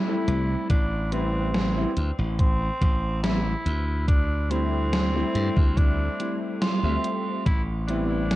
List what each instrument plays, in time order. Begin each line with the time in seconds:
Already playing: tenor saxophone E4
0.07 electric grand piano G3 A3 C4 E4
0.28 slap bass C2, closed hi-hat
0.70 slap bass A1, tenor saxophone D4, kick, closed hi-hat
1.12 electric grand piano G3 C4 E4 B4, tenor saxophone C4, closed hi-hat
1.54 snare, closed hi-hat
1.76 electric grand piano G3 B3 C4 E4
1.97 slap bass D2, closed hi-hat
2.19 slap bass A1
2.39 tenor saxophone C4, kick, closed hi-hat
2.81 slap bass A1, kick, closed hi-hat
3.23 electric grand piano G3 B3 C4 E4, tenor saxophone E4, snare, closed hi-hat
3.66 slap bass D2, closed hi-hat
4.08 tenor saxophone D4, kick, closed hi-hat
4.50 electric grand piano G3 A3 C4 E4, tenor saxophone C4, closed hi-hat
4.93 snare, closed hi-hat
5.13 electric grand piano G3 A3 C4 E4
5.35 slap bass G2, closed hi-hat
5.57 slap bass D2, kick
5.77 tenor saxophone D4, kick, closed hi-hat
6.19 electric grand piano G3 A3 C4 E4, closed hi-hat
6.62 tenor saxophone F4, snare, closed hi-hat
6.83 slap bass D2, electric grand piano G3 A3 C4 E5
7.04 closed hi-hat
7.46 slap bass A1, tenor saxophone E4, kick, closed hi-hat
7.88 electric grand piano G3 B3 C4 E4, tenor saxophone D4, closed hi-hat
8.31 snare, closed hi-hat